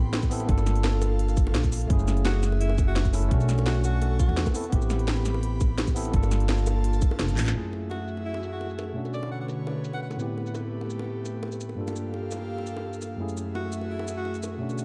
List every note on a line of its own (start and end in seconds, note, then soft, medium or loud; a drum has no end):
0.00 0.47 A1 loud
0.00 0.28 B3 loud
0.00 0.29 C4 medium
0.00 0.30 E4 medium
0.00 0.31 G4 loud
0.00 0.47 G5 medium
0.00 0.47 B5 medium
0.00 0.47 C6 medium
0.13 snare loud
0.13 closed hi-hat medium
0.13 high bongo medium
0.23 kick medium
0.23 closed hi-hat soft
0.23 shaker soft
0.30 0.40 B3 medium
0.30 0.40 C4 medium
0.30 0.41 E4 medium
0.30 0.41 A4 loud
0.30 open hi-hat medium
0.30 shaker medium
0.40 closed hi-hat soft
0.40 high bongo medium
0.46 1.55 G1 loud
0.46 1.69 A#3 loud
0.46 1.70 D4 medium
0.46 1.71 F4 medium
0.46 1.89 A4 medium
0.46 1.89 F5 medium
0.46 kick loud
0.46 closed hi-hat medium
0.52 1.72 A4 loud
0.58 high bongo medium
0.58 shaker soft
0.66 snare soft
0.66 closed hi-hat medium
0.66 shaker medium
0.76 closed hi-hat soft
0.84 snare loud
0.84 closed hi-hat medium
0.84 high bongo medium
1.02 closed hi-hat medium
1.02 high bongo medium
1.02 shaker medium
1.19 closed hi-hat medium
1.28 high bongo medium
1.28 shaker soft
1.37 kick loud
1.37 closed hi-hat medium
1.37 shaker medium
1.47 high bongo medium
1.55 1.89 A#1 loud
1.55 snare loud
1.55 closed hi-hat medium
1.64 kick medium
1.64 closed hi-hat soft
1.64 shaker soft
1.72 open hi-hat medium
1.72 high bongo medium
1.72 shaker medium
1.82 closed hi-hat soft
1.87 3.30 F#1 loud
1.87 3.10 A3 medium
1.87 3.11 C#4 medium
1.87 3.12 E4 medium
1.87 3.30 G#4 medium
1.87 3.30 E5 medium
1.87 kick loud
1.87 closed hi-hat medium
1.93 3.13 G#4 loud
1.99 shaker soft
2.07 snare soft
2.07 closed hi-hat medium
2.07 high bongo soft
2.07 shaker medium
2.17 closed hi-hat soft
2.25 2.47 F#4 loud
2.25 snare loud
2.25 closed hi-hat medium
2.25 high bongo medium
2.43 snare soft
2.43 closed hi-hat medium
2.43 shaker medium
2.52 high bongo medium
2.61 2.82 E4 loud
2.61 closed hi-hat medium
2.69 high bongo medium
2.78 kick loud
2.78 closed hi-hat medium
2.78 shaker medium
2.88 3.09 F#4 medium
2.96 snare loud
2.96 closed hi-hat medium
2.96 high bongo medium
3.05 kick medium
3.05 closed hi-hat soft
3.05 shaker soft
3.12 3.22 A3 medium
3.12 3.23 C#4 medium
3.12 3.23 E4 medium
3.12 3.24 A4 loud
3.12 open hi-hat medium
3.12 high bongo medium
3.12 shaker medium
3.23 closed hi-hat soft
3.28 4.27 B1 loud
3.28 4.51 A3 loud
3.28 4.52 C#4 medium
3.28 4.53 D4 medium
3.28 4.53 A4 medium
3.28 4.53 C#6 medium
3.28 kick loud
3.28 closed hi-hat loud
3.34 4.54 F#4 loud
3.40 high bongo medium
3.40 shaker soft
3.49 snare soft
3.49 closed hi-hat medium
3.49 shaker medium
3.58 closed hi-hat soft
3.58 high bongo medium
3.66 3.82 F#4 medium
3.66 snare loud
3.66 closed hi-hat medium
3.84 4.18 F#4 loud
3.84 closed hi-hat medium
3.84 high bongo soft
3.84 shaker medium
4.02 closed hi-hat medium
4.02 high bongo medium
4.19 4.46 F#4 medium
4.19 kick loud
4.19 closed hi-hat medium
4.19 shaker medium
4.28 4.44 E2 loud
4.28 high bongo medium
4.37 snare loud
4.37 closed hi-hat medium
4.46 kick medium
4.46 closed hi-hat soft
4.46 high bongo medium
4.46 shaker soft
4.53 4.63 B3 medium
4.53 4.64 C4 medium
4.53 4.64 E4 medium
4.53 6.12 G4 medium
4.53 4.65 A4 loud
4.53 6.12 B5 medium
4.53 open hi-hat medium
4.53 shaker medium
4.64 closed hi-hat soft
4.70 6.12 A1 loud
4.70 5.93 B3 medium
4.70 5.93 C4 medium
4.70 5.94 E4 medium
4.70 kick loud
4.70 closed hi-hat loud
4.70 high bongo medium
4.75 5.95 G4 loud
4.82 shaker soft
4.90 snare soft
4.90 closed hi-hat medium
4.90 high bongo medium
4.90 shaker medium
4.99 closed hi-hat soft
5.08 snare loud
5.08 closed hi-hat medium
5.17 high bongo medium
5.25 snare soft
5.25 closed hi-hat medium
5.25 shaker medium
5.34 high bongo medium
5.43 closed hi-hat medium
5.61 kick loud
5.61 closed hi-hat medium
5.61 high bongo soft
5.61 shaker medium
5.78 snare loud
5.78 closed hi-hat medium
5.78 high bongo medium
5.87 kick medium
5.87 closed hi-hat soft
5.87 shaker soft
5.95 6.05 B3 medium
5.95 6.05 C4 medium
5.95 6.05 E4 medium
5.95 6.06 A4 loud
5.95 open hi-hat medium
5.95 shaker medium
6.05 closed hi-hat soft
6.05 high bongo medium
6.11 7.00 G1 loud
6.11 7.34 A#3 loud
6.11 7.53 A#3 medium
6.11 7.35 D4 medium
6.11 7.53 F4 medium
6.11 7.36 F4 medium
6.11 7.53 A5 medium
6.11 kick loud
6.11 closed hi-hat loud
6.16 7.36 A4 loud
6.23 high bongo medium
6.23 shaker soft
6.31 snare soft
6.31 closed hi-hat medium
6.31 shaker medium
6.40 closed hi-hat soft
6.49 snare loud
6.49 closed hi-hat loud
6.49 high bongo medium
6.58 shaker soft
6.66 closed hi-hat medium
6.66 high bongo medium
6.66 shaker medium
6.84 closed hi-hat loud
6.93 high bongo soft
6.93 shaker soft
7.02 kick loud
7.02 closed hi-hat medium
7.02 shaker medium
7.11 high bongo medium
7.19 7.37 F1 loud
7.19 snare loud
7.19 closed hi-hat medium
7.29 closed hi-hat soft
7.29 shaker soft
7.37 7.53 A1 medium
7.37 clap medium
7.37 open hi-hat medium
7.37 high bongo medium
7.37 shaker medium
7.46 clap loud
7.46 closed hi-hat soft
7.52 8.93 F#2 medium
7.52 8.93 A3 medium
7.52 10.17 A3 medium
7.52 8.94 C#4 medium
7.52 8.95 E4 medium
7.52 8.94 F#4 medium
7.52 8.95 G#4 medium
7.52 8.94 E5 medium
7.57 8.95 G#4 medium
7.64 shaker soft
7.72 high bongo soft
7.72 shaker soft
7.90 8.12 F#4 medium
7.90 high bongo medium
8.08 shaker medium
8.17 high bongo soft
8.25 8.47 E4 medium
8.34 high bongo medium
8.43 shaker medium
8.52 8.73 F#4 medium
8.61 high bongo soft
8.70 shaker soft
8.78 high bongo medium
8.78 shaker medium
8.93 10.16 B2 medium
8.93 10.18 D3 medium
8.93 10.17 A3 medium
8.93 10.17 C#4 medium
8.93 10.18 D4 medium
8.93 11.76 B4 medium
8.93 10.18 C#5 medium
8.99 10.19 F#4 medium
9.05 high bongo soft
9.05 shaker soft
9.14 9.30 D5 medium
9.14 shaker soft
9.23 high bongo medium
9.31 9.37 F#5 medium
9.41 9.46 F#5 medium
9.48 high bongo medium
9.48 shaker soft
9.67 high bongo medium
9.84 shaker soft
9.93 9.99 F#5 medium
9.93 high bongo soft
10.02 10.08 F#5 medium
10.11 high bongo medium
10.11 shaker soft
10.17 11.75 A2 medium
10.17 11.77 A3 medium
10.17 11.76 B3 medium
10.17 11.76 C4 medium
10.17 11.77 E4 medium
10.17 11.77 G4 medium
10.17 shaker medium
10.22 11.78 G4 medium
10.38 high bongo soft
10.46 shaker soft
10.55 high bongo medium
10.55 shaker soft
10.81 high bongo medium
10.90 shaker soft
10.99 high bongo medium
11.25 high bongo medium
11.25 shaker soft
11.43 high bongo medium
11.52 shaker soft
11.61 shaker medium
11.69 high bongo soft
11.75 13.16 G2 medium
11.75 13.17 A#3 medium
11.75 13.18 A#3 medium
11.75 13.17 D4 medium
11.75 13.18 F4 medium
11.75 13.18 G4 medium
11.75 13.18 A4 medium
11.75 13.18 F5 medium
11.81 13.19 A4 medium
11.87 high bongo medium
11.87 shaker soft
11.96 shaker medium
12.14 high bongo medium
12.31 high bongo medium
12.31 shaker medium
12.58 high bongo soft
12.66 shaker soft
12.77 high bongo medium
12.93 shaker soft
13.02 high bongo soft
13.02 shaker medium
13.17 14.57 F#2 medium
13.17 14.58 A3 medium
13.17 14.59 A3 medium
13.17 14.59 C#4 medium
13.17 14.59 E4 medium
13.17 14.59 F#4 medium
13.17 14.59 G#4 medium
13.17 14.59 E5 medium
13.22 14.60 G#4 medium
13.29 shaker soft
13.37 high bongo soft
13.37 shaker medium
13.55 13.76 F#4 medium
13.55 high bongo medium
13.72 shaker medium
13.81 high bongo soft
13.90 14.11 E4 medium
13.99 high bongo medium
14.08 shaker medium
14.17 14.38 F#4 medium
14.25 high bongo soft
14.34 shaker soft
14.43 high bongo medium
14.43 shaker medium
14.58 14.85 B2 medium
14.58 14.85 D3 medium
14.58 14.85 A3 medium
14.58 14.85 B3 medium
14.58 14.85 C#4 medium
14.58 14.85 D4 medium
14.58 14.85 A4 medium
14.58 14.85 C#5 medium
14.63 14.85 F#4 medium
14.69 high bongo soft
14.69 shaker soft
14.78 shaker medium